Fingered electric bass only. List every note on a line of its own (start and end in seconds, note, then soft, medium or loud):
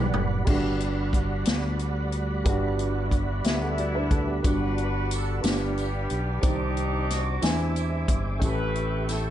0.14 0.44 F#1 medium
0.48 1.43 G1 medium
1.48 2.42 D2 medium
2.45 3.41 G1 medium
3.45 4.40 D2 medium
4.44 5.40 G1 medium
5.44 6.06 G1 medium
6.11 6.41 B1 medium
6.43 7.38 C2 medium
7.43 8.05 E2 medium
8.09 8.39 G1 medium
8.41 9.30 A1 medium